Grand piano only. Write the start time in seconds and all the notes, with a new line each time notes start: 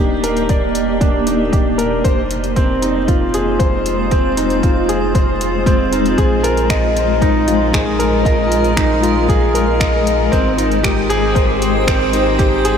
Already playing: D4 D#4 G4 A#4 D5
0.24 A#4
0.49 D5
1.01 D4
1.26 D#4
1.52 G4
1.78 A#4
2.04 C5
2.56 C4
2.82 D#4
3.08 F4
3.34 G#4
3.59 C5
4.11 C4
4.37 D#4
4.63 F4
4.89 G#4
5.15 C5
5.66 C4
5.92 D#4
6.18 G#4
6.43 A#4
6.70 D#5
7.22 D#4
7.48 F4
7.73 G#4
7.99 A#4
8.25 D#5
8.77 D#4
9.03 F4
9.29 G#4
9.55 A#4
9.80 D#5
10.32 C4
10.58 D#4
10.83 G4
11.10 G#4
11.35 C5
11.87 C4
12.13 D#4
12.39 G4
12.65 G#4